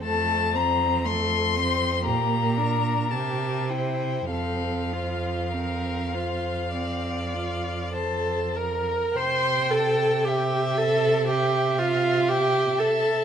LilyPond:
<<
  \new Staff \with { instrumentName = "Violin" } { \time 4/4 \key f \major \tempo 4 = 56 a''8 bes''8 c'''4 bes''4 a''8 g''8 | f''2. a''8 bes''8 | \key c \major c'''8 a''8 g''8 a''8 g''8 f''8 g''8 a''8 | }
  \new Staff \with { instrumentName = "Violin" } { \time 4/4 \key f \major a'8 c''8 a'8 c''8 g'8 bes'8 bes'8 c''8 | a'8 c''8 bes'8 c''8 d''4 c''8 bes'8 | \key c \major g''4 e''4 e''2 | }
  \new Staff \with { instrumentName = "Viola" } { \time 4/4 \key f \major a8 c'8 a8 c'8 bes8 d'8 g'8 e'8 | c'8 f'8 c'8 f'8 c'8 f'8 a'8 bes'8 | \key c \major c''8 a'8 g'8 a'8 g'8 f'8 g'8 a'8 | }
  \new Staff \with { instrumentName = "Cello" } { \clef bass \time 4/4 \key f \major f,2 bes,4 c4 | f,1 | \key c \major c1 | }
>>